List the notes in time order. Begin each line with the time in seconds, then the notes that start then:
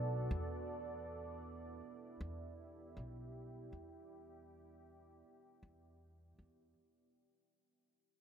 Already playing: B1 B3 F#4 A4 D5
0.31 E2
0.86 E4
1.61 G4
2.21 E2
2.97 B1
3.73 E2
5.63 E2
6.39 E2